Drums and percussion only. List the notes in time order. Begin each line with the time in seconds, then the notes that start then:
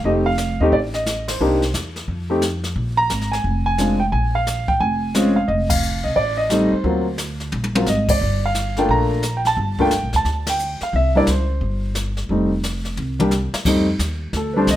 0.04 brush sweep, kick
0.38 snare, hi-hat pedal
0.72 brush sweep, kick
0.94 snare
1.06 snare, hi-hat pedal
1.28 snare, ride
1.41 brush sweep
1.62 snare
1.74 snare, hi-hat pedal
1.96 snare
2.08 brush sweep, kick
2.42 snare, hi-hat pedal
2.64 snare
2.76 brush sweep, kick
3.10 snare, hi-hat pedal
3.21 snare
3.33 snare
3.44 brush sweep, kick
3.78 snare, hi-hat pedal
4.12 brush sweep, kick
4.47 snare, hi-hat pedal
4.68 kick
4.80 brush sweep, kick
5.15 snare, hi-hat pedal
5.48 brush sweep, kick
5.70 kick, ride
5.82 hi-hat pedal
6.16 brush sweep, kick
6.50 snare, hi-hat pedal
6.84 brush sweep, kick
7.18 snare, hi-hat pedal
7.40 snare
7.52 high tom
7.64 high tom
7.75 high tom
7.86 snare, hi-hat pedal
8.09 kick, ride
8.21 brush sweep
8.55 snare, hi-hat pedal
8.76 snare
8.89 brush sweep, kick
9.23 snare, hi-hat pedal
9.45 snare
9.57 brush sweep, kick
9.79 kick
9.91 snare, hi-hat pedal
10.13 snare
10.25 brush sweep, kick, snare
10.47 snare, ride
10.59 hi-hat pedal
10.81 snare
10.93 brush sweep, kick
11.27 snare, hi-hat pedal
11.61 brush sweep, kick
11.95 snare, hi-hat pedal
12.17 snare
12.29 brush sweep, kick
12.63 snare, hi-hat pedal
12.85 snare
12.97 mid tom
13.20 mid tom
13.31 snare, hi-hat pedal
13.54 snare
13.65 brush sweep, kick, snare, crash
13.99 kick, snare, hi-hat pedal
14.33 brush sweep, kick, snare
14.67 kick, snare, hi-hat pedal